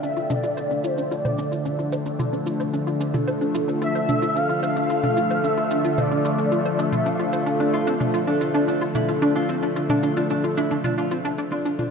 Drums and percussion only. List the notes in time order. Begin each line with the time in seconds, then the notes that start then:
0.03 shaker
0.17 shaker
0.30 high tom, shaker
0.44 shaker
0.57 shaker
0.71 shaker
0.84 shaker
0.98 shaker
1.11 shaker
1.25 high tom, shaker
1.38 shaker
1.52 shaker
1.66 shaker
1.79 shaker
1.93 shaker
2.06 shaker
2.20 high tom, shaker
2.33 shaker
2.46 shaker
2.60 shaker
2.74 shaker
2.87 shaker
3.01 shaker
3.14 high tom, shaker
3.28 shaker
3.41 shaker
3.55 shaker
3.68 shaker
3.82 shaker
3.96 shaker
4.09 high tom, shaker
4.22 shaker
4.36 shaker
4.50 shaker
4.63 shaker
4.76 shaker
4.90 shaker
5.04 high tom, shaker
5.17 shaker
5.30 shaker
5.44 shaker
5.57 shaker
5.71 shaker
5.84 shaker
5.98 high tom, shaker
6.11 shaker
6.25 shaker
6.38 shaker
6.52 shaker
6.66 shaker
6.79 shaker
6.93 high tom, shaker
7.06 shaker
7.20 shaker
7.33 shaker
7.47 shaker
7.60 shaker
7.74 shaker
7.87 shaker
8.01 high tom, shaker
8.14 shaker
8.28 shaker
8.41 shaker
8.55 shaker
8.68 shaker
8.82 shaker
8.95 high tom, shaker
9.09 shaker
9.22 shaker
9.36 shaker
9.49 shaker
9.63 shaker
9.76 shaker
9.89 high tom, shaker
10.03 shaker
10.17 shaker
10.30 shaker
10.43 shaker
10.57 shaker
10.71 shaker
10.84 high tom, shaker
10.98 shaker
11.11 shaker
11.25 shaker
11.38 shaker
11.52 shaker
11.65 shaker
11.79 high tom, shaker